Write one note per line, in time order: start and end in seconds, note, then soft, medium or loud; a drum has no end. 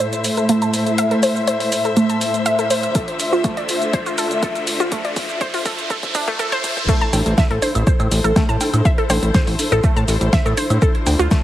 0.00 2.91 A2 medium
0.00 2.91 A3 medium
0.00 2.91 E4 medium
0.00 6.84 C5 medium
0.00 6.85 E5 medium
0.00 closed hi-hat medium
0.00 riser medium
0.00 shaker soft
0.13 closed hi-hat soft
0.13 shaker soft
0.24 open hi-hat loud
0.24 shaker medium
0.37 0.46 A4 medium
0.37 closed hi-hat soft
0.37 shaker soft
0.49 0.56 A3 medium
0.49 closed hi-hat medium
0.49 shaker soft
0.62 0.68 A5 medium
0.62 closed hi-hat soft
0.62 shaker soft
0.74 open hi-hat loud
0.74 shaker medium
0.86 closed hi-hat soft
0.86 shaker soft
0.98 1.05 E5 loud
0.98 closed hi-hat medium
0.98 shaker soft
1.11 1.17 A4 medium
1.11 closed hi-hat soft
1.23 1.33 C5 medium
1.23 open hi-hat loud
1.23 shaker medium
1.36 shaker soft
1.47 1.57 C5 medium
1.47 closed hi-hat medium
1.47 shaker soft
1.60 open hi-hat medium
1.72 open hi-hat loud
1.72 shaker medium
1.85 1.94 A4 medium
1.85 closed hi-hat soft
1.85 shaker soft
1.97 2.03 A3 medium
1.97 closed hi-hat medium
1.97 shaker soft
2.10 2.15 A5 medium
2.10 closed hi-hat soft
2.10 shaker soft
2.21 open hi-hat loud
2.21 shaker medium
2.34 closed hi-hat soft
2.34 shaker soft
2.46 2.52 E5 loud
2.46 closed hi-hat medium
2.46 shaker soft
2.59 2.65 A4 medium
2.59 closed hi-hat soft
2.59 shaker soft
2.70 2.80 C5 medium
2.70 open hi-hat loud
2.70 shaker medium
2.83 closed hi-hat soft
2.83 shaker soft
2.95 6.85 D2 medium
2.95 6.85 D3 medium
2.95 6.85 F4 medium
2.95 3.05 A4 medium
2.95 kick loud
2.95 closed hi-hat medium
2.95 shaker soft
3.08 closed hi-hat soft
3.20 open hi-hat loud
3.20 shaker medium
3.33 3.41 F4 medium
3.33 shaker soft
3.44 3.51 A3 medium
3.44 kick loud
3.44 closed hi-hat medium
3.44 shaker soft
3.57 3.63 D5 medium
3.57 closed hi-hat soft
3.69 open hi-hat loud
3.69 shaker medium
3.82 closed hi-hat soft
3.82 shaker soft
3.93 4.00 C5 loud
3.93 kick loud
3.93 closed hi-hat medium
3.93 shaker soft
4.06 4.12 F4 medium
4.06 closed hi-hat soft
4.06 shaker soft
4.18 4.28 A4 medium
4.18 open hi-hat loud
4.18 shaker medium
4.31 closed hi-hat soft
4.31 shaker soft
4.43 4.52 A4 medium
4.43 kick loud
4.43 closed hi-hat medium
4.43 shaker soft
4.55 closed hi-hat soft
4.55 shaker soft
4.67 open hi-hat loud
4.67 shaker medium
4.80 4.89 F4 medium
4.80 closed hi-hat soft
4.80 shaker soft
4.92 4.98 A3 medium
4.92 kick loud
4.92 closed hi-hat medium
4.92 shaker soft
5.05 5.11 D5 medium
5.05 closed hi-hat soft
5.16 kick loud
5.16 open hi-hat loud
5.16 shaker medium
5.29 closed hi-hat soft
5.29 shaker soft
5.41 5.47 C5 loud
5.41 kick loud
5.41 closed hi-hat medium
5.41 shaker soft
5.54 5.60 F4 medium
5.54 open hi-hat medium
5.66 5.75 A4 medium
5.66 kick loud
5.66 open hi-hat loud
5.66 shaker medium
5.78 closed hi-hat soft
5.78 shaker soft
5.90 6.00 A4 medium
5.90 kick loud
5.90 closed hi-hat medium
5.90 shaker soft
6.03 kick medium
6.03 closed hi-hat soft
6.03 shaker soft
6.15 6.19 D4 medium
6.15 kick loud
6.15 open hi-hat loud
6.15 shaker medium
6.28 6.31 A3 loud
6.28 kick loud
6.28 closed hi-hat soft
6.28 shaker soft
6.39 6.46 A4 medium
6.39 kick loud
6.39 closed hi-hat medium
6.39 shaker soft
6.52 6.56 C5 loud
6.52 kick medium
6.52 closed hi-hat soft
6.52 shaker soft
6.64 kick loud
6.64 open hi-hat loud
6.64 shaker medium
6.77 kick medium
6.77 closed hi-hat soft
6.77 shaker soft
6.88 6.95 A3 medium
6.88 11.43 E4 medium
6.88 10.78 A4 medium
6.88 11.43 C5 medium
6.88 kick loud
6.88 closed hi-hat medium
6.88 crash loud
6.88 shaker soft
7.01 7.07 A5 medium
7.01 closed hi-hat soft
7.13 7.22 A1 loud
7.13 open hi-hat loud
7.13 cowbell medium
7.13 high conga medium
7.13 shaker medium
7.26 7.34 A1 medium
7.26 closed hi-hat medium
7.26 shaker soft
7.38 7.44 E5 loud
7.38 kick loud
7.38 snare loud
7.38 closed hi-hat medium
7.38 shaker soft
7.51 7.59 A1 medium
7.51 7.56 A4 medium
7.51 closed hi-hat soft
7.62 7.72 C5 medium
7.62 open hi-hat loud
7.62 high conga medium
7.62 shaker medium
7.75 7.83 A1 medium
7.75 closed hi-hat medium
7.75 high woodblock medium
7.75 shaker soft
7.87 7.97 C5 medium
7.87 kick loud
7.87 closed hi-hat medium
7.87 shaker soft
8.00 8.08 A2 medium
8.00 closed hi-hat soft
8.00 high woodblock medium
8.00 shaker soft
8.11 8.20 A1 loud
8.11 open hi-hat loud
8.11 shaker medium
8.24 8.32 A1 medium
8.24 8.33 A4 medium
8.24 closed hi-hat medium
8.24 shaker soft
8.36 8.42 A3 medium
8.36 kick loud
8.36 snare loud
8.36 closed hi-hat medium
8.36 cowbell medium
8.36 shaker soft
8.49 8.57 A2 medium
8.49 8.55 A5 medium
8.49 closed hi-hat soft
8.49 shaker soft
8.61 open hi-hat loud
8.61 cowbell medium
8.61 high conga medium
8.61 shaker medium
8.73 8.82 A2 medium
8.73 closed hi-hat medium
8.73 high conga medium
8.73 high woodblock medium
8.73 shaker soft
8.85 8.92 E5 loud
8.85 kick loud
8.85 closed hi-hat medium
8.85 shaker soft
8.98 9.04 A4 medium
8.98 closed hi-hat soft
9.10 9.19 A1 loud
9.10 9.19 C5 medium
9.10 open hi-hat loud
9.10 cowbell medium
9.10 high conga medium
9.10 shaker medium
9.23 9.31 A1 medium
9.23 closed hi-hat medium
9.23 shaker soft
9.34 9.44 C5 medium
9.34 kick loud
9.34 snare loud
9.34 closed hi-hat medium
9.34 shaker soft
9.47 9.55 A1 medium
9.47 open hi-hat medium
9.59 open hi-hat loud
9.59 high conga medium
9.59 shaker medium
9.72 9.80 A1 medium
9.72 9.81 A4 medium
9.72 closed hi-hat medium
9.72 high woodblock medium
9.72 shaker soft
9.84 9.90 A3 medium
9.84 kick loud
9.84 closed hi-hat medium
9.84 shaker soft
9.96 10.04 A2 medium
9.96 10.02 A5 medium
9.96 closed hi-hat soft
9.96 shaker soft
10.08 10.17 A1 loud
10.08 open hi-hat loud
10.08 shaker medium
10.21 10.29 A1 medium
10.21 closed hi-hat medium
10.21 shaker soft
10.33 10.39 E5 loud
10.33 kick loud
10.33 snare loud
10.33 closed hi-hat medium
10.33 shaker soft
10.45 10.54 A2 medium
10.45 10.52 A4 medium
10.45 closed hi-hat soft
10.45 high woodblock medium
10.45 shaker soft
10.57 10.67 C5 medium
10.57 open hi-hat loud
10.57 high conga medium
10.57 shaker medium
10.70 10.78 A2 medium
10.70 closed hi-hat medium
10.70 high conga medium
10.70 high woodblock medium
10.70 shaker soft
10.82 11.43 D3 medium
10.82 11.43 D4 medium
10.82 11.43 F4 medium
10.82 10.92 A4 medium
10.82 kick loud
10.82 closed hi-hat medium
10.82 shaker soft
10.95 closed hi-hat soft
11.06 11.15 D2 loud
11.06 open hi-hat loud
11.06 cowbell medium
11.06 high conga medium
11.06 shaker medium
11.19 11.27 D2 medium
11.19 11.28 F4 medium
11.19 closed hi-hat medium
11.19 shaker soft
11.31 11.38 A3 medium
11.31 kick loud
11.31 snare loud
11.31 closed hi-hat medium
11.31 shaker soft